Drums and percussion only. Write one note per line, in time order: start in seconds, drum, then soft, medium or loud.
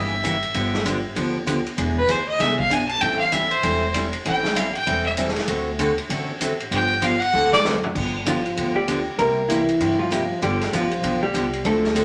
0.24 kick soft
0.24 hi-hat pedal medium
0.24 ride medium
0.43 ride soft
0.54 kick soft
0.54 ride medium
0.74 snare soft
0.86 kick soft
0.86 hi-hat pedal medium
0.86 ride medium
1.16 kick soft
1.16 ride medium
1.47 kick soft
1.47 hi-hat pedal medium
1.47 ride medium
1.66 ride soft
1.78 kick soft
1.78 ride medium
2.08 kick soft
2.08 hi-hat pedal medium
2.08 ride medium
2.40 kick soft
2.40 snare soft
2.40 ride medium
2.59 kick medium
2.71 kick soft
2.71 hi-hat pedal medium
2.71 ride medium
2.89 ride soft
3.01 kick soft
3.01 ride medium
3.32 kick soft
3.32 hi-hat pedal medium
3.32 ride medium
3.51 ride soft
3.63 kick soft
3.63 ride medium
3.94 kick soft
3.94 hi-hat pedal medium
3.94 ride medium
4.13 ride soft
4.25 kick soft
4.25 ride medium
4.44 snare medium
4.56 kick soft
4.56 hi-hat pedal medium
4.56 ride medium
4.75 ride soft
4.87 kick soft
4.87 ride medium
5.17 kick soft
5.17 hi-hat pedal medium
5.17 ride medium
5.28 snare soft
5.36 snare soft
5.36 ride soft
5.48 kick soft
5.48 ride medium
5.79 kick soft
5.79 hi-hat pedal medium
5.79 ride medium
5.98 ride medium
6.10 kick soft
6.10 ride medium
6.41 kick soft
6.41 hi-hat pedal medium
6.41 ride medium
6.60 ride soft
6.71 kick soft
6.71 ride medium
7.02 kick soft
7.02 hi-hat pedal medium
7.02 ride medium
7.22 ride soft
7.53 snare medium
7.65 snare medium
7.65 hi-hat pedal medium
7.83 floor tom medium
7.95 kick medium
7.95 crash medium
8.26 kick soft
8.26 hi-hat pedal medium
8.26 ride medium
8.46 ride soft
8.57 kick soft
8.57 ride medium
8.88 kick soft
8.88 hi-hat pedal medium
8.88 ride medium
9.19 kick soft
9.19 ride medium
9.50 kick soft
9.50 hi-hat pedal medium
9.50 ride medium
9.69 ride soft
9.80 kick soft
9.80 ride medium
10.11 kick soft
10.11 hi-hat pedal medium
10.11 ride medium
10.42 kick soft
10.42 ride medium
10.61 snare soft
10.61 ride medium
10.73 kick soft
10.73 hi-hat pedal medium
10.73 ride medium
10.91 ride soft
11.03 kick soft
11.03 ride medium
11.34 kick soft
11.34 hi-hat pedal medium
11.34 ride medium
11.53 ride soft
11.65 kick soft
11.65 ride medium
11.84 snare soft
11.96 kick soft
11.96 hi-hat pedal medium
11.96 ride medium